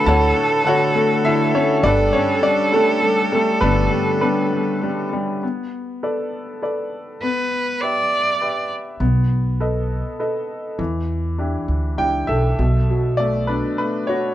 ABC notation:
X:1
M:3/4
L:1/8
Q:1/4=100
K:Bm
V:1 name="Cello"
A6 | A6- | A4- A z | z6 |
B2 d3 z | z6 | z6 | z6 |]
V:2 name="Upright piano"
[Acfa]2 [Fcf]2 [Ee] [Cc] | [DABd] [Cc] [Dd] [A,DA]2 [A,A] | [B,DB]2 [B,DB]3 z | z6 |
z6 | z6 | z4 g [Ae]- | [Ae]2 d B B c |]
V:3 name="Upright piano"
[A,,D,A,] A, D, A, D, A, | G, G, G, G, G, G, | D, G, G, G, G, G, | B,2 [ABd]2 [ABd]2 |
B,2 [GBe]2 [GBe]2 | B,2 [AB^d]2 [ABd]2 | E,2 [DEG]2 [DEG]2 | B,, F, A, D A, F |]
V:4 name="Upright bass" clef=bass
D,, z4 z | G,,, z4 z | G,,, z4 z | z6 |
z6 | B,,,4 z2 | E,,3 D,, C,, B,,, | B,,,4 z2 |]